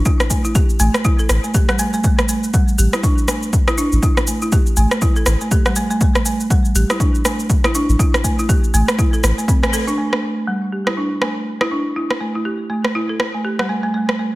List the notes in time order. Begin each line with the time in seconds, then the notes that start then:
0.05 E4, kick, shaker
0.20 cross-stick, shaker
0.30 A3, kick, shaker
0.45 E4, shaker
0.55 G4, kick, shaker
0.70 shaker
0.80 A1 A3, shaker
0.94 cross-stick, shaker
1.05 E4, kick, shaker
1.19 A4, shaker
1.29 A1, cross-stick, shaker
1.44 A3, shaker
1.54 G4, kick, shaker
1.69 G3, cross-stick, shaker
1.79 A3, shaker
1.93 A3, shaker
2.04 A3, kick, shaker
2.19 cross-stick, shaker
2.29 A3, shaker
2.44 shaker
2.54 G3, kick, shaker
2.68 shaker
2.78 A1 G4, shaker
2.93 E4, cross-stick, shaker
3.03 D4, kick, shaker
3.18 shaker
3.28 A3, cross-stick, shaker
3.43 shaker
3.53 kick, shaker
3.68 E4, cross-stick, shaker
3.78 D4, shaker
3.92 A1, shaker
4.03 E4, kick, shaker
4.17 cross-stick, shaker
4.27 A3, shaker
4.42 E4, shaker
4.52 G4, kick, shaker
4.66 shaker
4.77 A1 A3, shaker
4.91 cross-stick, shaker
5.02 E4, kick, shaker
5.16 A4, shaker
5.26 A1, cross-stick, shaker
5.41 A3, shaker
5.51 G4, kick, shaker
5.66 G3, cross-stick, shaker
5.76 A3, shaker
5.91 A3, shaker
6.01 A3, kick, shaker
6.15 cross-stick, shaker
6.25 A3, shaker
6.40 shaker
6.50 G3, kick, shaker
6.65 shaker
6.75 A1 G4, shaker
6.90 E4, cross-stick, shaker
7.00 D4, kick, shaker
7.15 shaker
7.25 A3, cross-stick, shaker
7.40 shaker
7.50 kick, shaker
7.64 E4, cross-stick, shaker
7.75 D4, shaker
7.89 A1, shaker
7.99 E4, kick, shaker
8.14 cross-stick, shaker
8.24 A3, kick, shaker
8.39 E4, shaker
8.49 G4, kick, shaker
8.64 shaker
8.74 A1 A3, shaker
8.88 cross-stick, shaker
8.99 E4, kick, shaker
9.13 A4, shaker
9.24 A1, cross-stick, shaker
9.38 A3, shaker
9.48 C4, kick, shaker
9.63 A3, cross-stick, shaker
9.73 A4, shaker
9.87 D4, shaker
9.98 A3
10.13 cross-stick
10.23 A3
10.47 G3
10.72 G4
10.87 E4, cross-stick
10.97 D4
11.22 A3, cross-stick
11.61 E4, cross-stick
11.71 D4
11.96 E4
12.11 cross-stick
12.21 A3
12.35 E4
12.45 G4
12.70 A3
12.85 cross-stick
12.95 E4
13.09 A4
13.20 cross-stick
13.34 A3
13.45 G4
13.59 G3, cross-stick
13.69 A3
13.84 A3
13.94 A3
14.09 cross-stick
14.19 A3